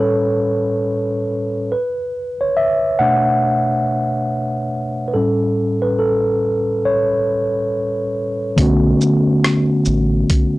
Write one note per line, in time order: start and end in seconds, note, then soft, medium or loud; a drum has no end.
0.00 1.67 A2 medium
0.00 1.68 G3 soft
0.00 1.68 C#4 medium
0.00 1.74 A4 medium
0.00 1.72 B4 medium
0.00 1.73 C#5 medium
1.72 2.37 B4 medium
2.41 2.56 C#5 medium
2.57 3.01 E5 loud
2.99 3.60 B2 medium
2.99 3.61 A3 soft
2.99 3.61 D4 medium
2.99 4.67 F#5 loud
5.08 5.14 B4 medium
5.14 6.39 A2 medium
5.14 6.39 G3 soft
5.14 6.40 C#4 medium
5.14 5.85 A4 medium
5.82 5.90 B4 medium
5.99 6.88 A4 medium
6.85 8.10 C#5 medium
8.56 8.94 B1 medium
8.56 10.13 D3 medium
8.56 10.13 A3 medium
8.56 10.14 B3 medium
8.56 10.15 C#4 medium
8.56 kick medium
8.56 closed hi-hat medium
8.61 10.15 F#4 medium
9.01 shaker soft
9.44 cross-stick loud
9.44 closed hi-hat medium
9.85 10.23 A1 loud
9.85 shaker soft
10.30 kick medium
10.30 closed hi-hat medium